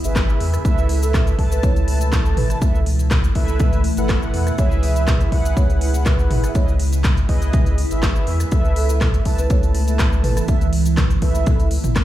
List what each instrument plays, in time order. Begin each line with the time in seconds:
Already playing: ambient pad C#3 G#3 B3 E4
0.04 sub bass G#1, analog polysynth E4 G#4 B4 E5, closed hi-hat, cabasa
0.16 kick, cross-stick, clap, closed hi-hat, cabasa
0.29 cabasa
0.40 sub bass E2, open hi-hat
0.54 cross-stick, closed hi-hat, cabasa
0.64 sub bass C#2, ambient pad B2 E3 A3, analog polysynth E4 A4 B4 E5, kick, closed hi-hat, cabasa
0.78 cabasa
0.89 marimba A4, open hi-hat
1.03 marimba A4, closed hi-hat, cabasa
1.14 kick, cross-stick, clap, closed hi-hat, mid tom, cabasa
1.27 closed hi-hat, cabasa
1.39 sub bass C#2, analog polysynth E4 A4 B4 A5, kick, open hi-hat
1.52 marimba B4, closed hi-hat, cabasa
1.63 marimba C#5, kick, closed hi-hat, cabasa
1.76 closed hi-hat, cabasa
1.88 open hi-hat
2.01 closed hi-hat, cabasa
2.13 kick, cross-stick, clap, closed hi-hat, mid tom, cabasa
2.26 cabasa
2.37 sub bass G#1, marimba B4, mid tom, open hi-hat
2.50 cross-stick, closed hi-hat, cabasa
2.62 sub bass C#2, analog polysynth E4 A4 B4 E5, kick, closed hi-hat, cabasa
2.75 cabasa
2.86 open hi-hat
2.99 closed hi-hat, cabasa
3.11 kick, cross-stick, clap, closed hi-hat, mid tom, cabasa
3.24 closed hi-hat, cabasa
3.35 sub bass C#2, analog polysynth E4 A4 B4 E5, kick, open hi-hat
3.48 closed hi-hat, cabasa
3.60 kick, closed hi-hat, mid tom, cabasa
3.73 closed hi-hat, cabasa
3.84 open hi-hat
3.97 sub bass G#1, analog polysynth E4 A4 B4 F#5, closed hi-hat, cabasa
4.09 kick, cross-stick, clap, closed hi-hat, cabasa
4.22 cabasa
4.34 sub bass E2, open hi-hat
4.47 cross-stick, closed hi-hat, cabasa
4.58 sub bass C#2, ambient pad C#3 G#3 B3 E4, analog polysynth E4 G#4 B4 E5, marimba C#5, kick, closed hi-hat, cabasa
4.72 cabasa
4.83 marimba E5, open hi-hat
4.96 closed hi-hat, cabasa
5.08 kick, cross-stick, clap, closed hi-hat, mid tom, cabasa
5.21 closed hi-hat, cabasa
5.32 sub bass C#2, analog polysynth E4 G#4 B4 F#5, marimba E5, kick, open hi-hat
5.45 closed hi-hat, cabasa
5.57 marimba C#5, kick, closed hi-hat, cabasa
5.70 closed hi-hat, cabasa
5.81 open hi-hat
5.94 closed hi-hat, cabasa
6.06 marimba B4, kick, cross-stick, clap, closed hi-hat, mid tom, cabasa
6.19 cabasa
6.30 sub bass G#1, mid tom, open hi-hat
6.44 cross-stick, closed hi-hat, cabasa
6.49 marimba E5
6.55 sub bass C#2, analog polysynth E4 G#4 B4 D#5, marimba C#5, kick, closed hi-hat, cabasa
6.68 cabasa
6.80 open hi-hat
6.93 closed hi-hat, cabasa
7.04 kick, cross-stick, clap, closed hi-hat, mid tom, cabasa
7.17 closed hi-hat, cabasa
7.29 sub bass C#2, analog polysynth E4 G#4 B4 D#5, kick, open hi-hat
7.42 closed hi-hat, cabasa
7.53 kick, closed hi-hat, mid tom, cabasa
7.66 closed hi-hat, cabasa
7.78 open hi-hat
7.91 sub bass G#1, analog polysynth E4 G#4 B4 E5, closed hi-hat, cabasa
8.03 kick, cross-stick, clap, closed hi-hat, cabasa
8.16 cabasa
8.27 sub bass E2, open hi-hat
8.40 cross-stick, closed hi-hat, cabasa
8.51 sub bass C#2, ambient pad E3 A3 E4, analog polysynth E4 A4 B4 E5, kick, closed hi-hat, cabasa
8.65 cabasa
8.76 marimba A4, open hi-hat
8.89 marimba A4, closed hi-hat, cabasa
9.01 kick, cross-stick, clap, closed hi-hat, mid tom, cabasa
9.14 closed hi-hat, cabasa
9.25 sub bass C#2, analog polysynth E4 A4 B4 A5, kick, open hi-hat
9.38 marimba B4, closed hi-hat, cabasa
9.50 marimba C#5, kick, closed hi-hat, cabasa
9.63 closed hi-hat, cabasa
9.75 open hi-hat
9.88 closed hi-hat, cabasa
9.99 kick, cross-stick, clap, closed hi-hat, mid tom, cabasa
10.13 cabasa
10.24 sub bass G#1, marimba B4, mid tom, open hi-hat
10.37 cross-stick, closed hi-hat, cabasa
10.48 sub bass C#2, analog polysynth E4 A4 B4 E5, kick, closed hi-hat, cabasa
10.61 closed hi-hat, cabasa
10.73 open hi-hat
10.86 closed hi-hat, cabasa
10.97 kick, cross-stick, clap, closed hi-hat, mid tom, cabasa
11.10 closed hi-hat, cabasa
11.22 sub bass C#2, analog polysynth E4 A4 B4 E5, kick, open hi-hat
11.35 closed hi-hat, cabasa
11.46 kick, closed hi-hat, mid tom, cabasa
11.60 closed hi-hat, cabasa
11.71 open hi-hat
11.84 sub bass G#1, closed hi-hat, mid tom, cabasa
11.96 kick, cross-stick, clap, closed hi-hat, cabasa